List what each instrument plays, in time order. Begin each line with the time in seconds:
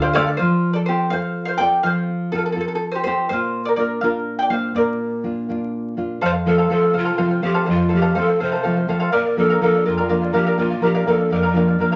Already playing: nylon-string guitar D3 F4 C5
0.02 charango G4 C5 D5 F5
0.13 nylon-string guitar A3 D5, charango G4 A4 C5 D5 F5, bombo rim
0.27 charango D5 F5
0.37 nylon-string guitar F3, charango F4 C5
0.73 charango A4 D5
0.86 nylon-string guitar C4 F4 A4, charango G4 C5
1.10 nylon-string guitar C4 F4 A4, charango C5 F5
1.45 charango C5 F5
1.58 nylon-string guitar C4 F4 A4, charango D5 G5
1.83 nylon-string guitar F3, charango C5 F5
2.32 nylon-string guitar C4 F4 A4, charango F4 A4
2.38 charango A4
2.46 charango A4
2.52 nylon-string guitar C4 F4, charango A4
2.57 nylon-string guitar A4, charango A4
2.68 charango A4
2.75 charango A4
2.92 charango G4 C5
3.04 nylon-string guitar C4 F4 A4, charango G4 C5
3.29 nylon-string guitar A#2, charango F4 C5
3.65 charango A#4 D5
3.76 nylon-string guitar A#3 D4 F4, charango A#4 D5
4.01 nylon-string guitar A#3 D4 F4, charango A#4 F5
4.39 charango D5 G5
4.50 nylon-string guitar A#3 D4 F4, charango C5 F5
4.75 nylon-string guitar A#2, charango A#4 D5
5.23 nylon-string guitar A#3 D4 F4
5.49 nylon-string guitar A#3 D4 F4
5.97 nylon-string guitar A#3 D4 F4
6.21 nylon-string guitar F2, charango A4 C5 F5, pan flute C5
6.33 charango C5 F5
6.46 nylon-string guitar F3 A3 C4, pan flute A4, charango A4 C5 F5
6.58 charango A4 C5 F5
6.70 nylon-string guitar F3 A3 C4, charango A4 C5 F5, pan flute A4
6.82 charango C5 F5
6.94 nylon-string guitar C3, charango A4 C5 F5
6.98 pan flute F4
7.05 charango A4 C5 F5
7.17 nylon-string guitar F3 A3 C4, charango A4 C5 F5
7.30 charango C5 F5
7.42 nylon-string guitar F3 A3 C4, pan flute G4, charango A4 C5 F5
7.54 charango A4 C5 F5
7.65 nylon-string guitar F2, charango A4 C5 F5
7.69 pan flute F4
7.76 charango C5 F5
7.89 nylon-string guitar F3 A3, charango A4 C5 F5
7.93 nylon-string guitar C4, pan flute G4
8.02 charango A4 C5 F5
8.15 nylon-string guitar F3 A3 C4, charango A4 C5 F5, pan flute A4
8.27 charango C5 F5
8.40 nylon-string guitar C3, charango A4 C5 F5, pan flute C5
8.52 charango A4 C5 F5
8.63 nylon-string guitar F3 A3 C4, charango A4 C5 F5
8.77 charango C5 F5
8.88 nylon-string guitar F3 A3 C4, charango A4 C5 F5
9.00 charango A4 C5 F5
9.12 nylon-string guitar A#2, charango A#4 D5 F5, pan flute A#4
9.25 charango D5 F5
9.37 nylon-string guitar F3 A#3 D4, pan flute A4, charango A#4 D5 F5
9.50 charango A#4 D5 F5
9.61 nylon-string guitar F3 A#3 D4, pan flute A4, charango A#4 D5 F5
9.75 charango D5 F5
9.85 nylon-string guitar F2, pan flute F4, charango A#4 D5 F5
9.97 charango A#4 D5 F5
10.09 nylon-string guitar F3 A#3 D4, charango A#4 D5 F5
10.22 charango D5 F5
10.33 nylon-string guitar F3 A#3 D4, pan flute G4, charango A#4 D5 F5
10.46 charango A#4 D5 F5
10.57 nylon-string guitar A#2, pan flute F4, charango A#4 D5 F5
10.70 charango D5 F5
10.81 nylon-string guitar F3 A#3 D4, pan flute G4, charango A#4 D5 F5
10.94 charango A#4 D5 F5
11.06 nylon-string guitar F3 A#3 D4, pan flute A4, charango A#4 D5 F5
11.18 charango F5
11.30 nylon-string guitar F2, charango A#4 D5 F5, pan flute A#4
11.43 charango A#4 D5 F5
11.53 nylon-string guitar F3 A#3 D4, charango A#4 D5 F5
11.68 charango D5 F5
11.78 nylon-string guitar F3 A#3 D4, charango A#4 D5 F5
11.92 charango D5 F5